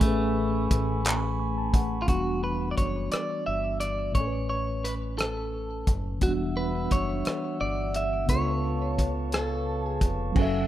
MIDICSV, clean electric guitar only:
0, 0, Header, 1, 2, 480
1, 0, Start_track
1, 0, Tempo, 689655
1, 11, Time_signature, 6, 3, 24, 8
1, 7429, End_track
2, 0, Start_track
2, 0, Title_t, "Clean electric guitar"
2, 0, Program_c, 0, 27
2, 18, Note_on_c, 0, 57, 89
2, 706, Note_off_c, 0, 57, 0
2, 1406, Note_on_c, 0, 65, 66
2, 1451, Note_off_c, 0, 65, 0
2, 1454, Note_on_c, 0, 66, 72
2, 1693, Note_off_c, 0, 66, 0
2, 1696, Note_on_c, 0, 71, 76
2, 1871, Note_off_c, 0, 71, 0
2, 1888, Note_on_c, 0, 74, 59
2, 1929, Note_off_c, 0, 74, 0
2, 1931, Note_on_c, 0, 73, 78
2, 2168, Note_off_c, 0, 73, 0
2, 2171, Note_on_c, 0, 74, 94
2, 2408, Note_off_c, 0, 74, 0
2, 2411, Note_on_c, 0, 76, 84
2, 2644, Note_off_c, 0, 76, 0
2, 2647, Note_on_c, 0, 74, 90
2, 2884, Note_off_c, 0, 74, 0
2, 2887, Note_on_c, 0, 73, 83
2, 3120, Note_off_c, 0, 73, 0
2, 3129, Note_on_c, 0, 73, 79
2, 3372, Note_on_c, 0, 71, 78
2, 3377, Note_off_c, 0, 73, 0
2, 3436, Note_off_c, 0, 71, 0
2, 3607, Note_on_c, 0, 69, 80
2, 4121, Note_off_c, 0, 69, 0
2, 4334, Note_on_c, 0, 66, 82
2, 4399, Note_off_c, 0, 66, 0
2, 4571, Note_on_c, 0, 71, 86
2, 4816, Note_on_c, 0, 73, 86
2, 4818, Note_off_c, 0, 71, 0
2, 5292, Note_off_c, 0, 73, 0
2, 5295, Note_on_c, 0, 74, 87
2, 5537, Note_off_c, 0, 74, 0
2, 5540, Note_on_c, 0, 76, 82
2, 5771, Note_off_c, 0, 76, 0
2, 5774, Note_on_c, 0, 73, 86
2, 6499, Note_on_c, 0, 69, 73
2, 6514, Note_off_c, 0, 73, 0
2, 6847, Note_off_c, 0, 69, 0
2, 6847, Note_on_c, 0, 68, 73
2, 7007, Note_off_c, 0, 68, 0
2, 7429, End_track
0, 0, End_of_file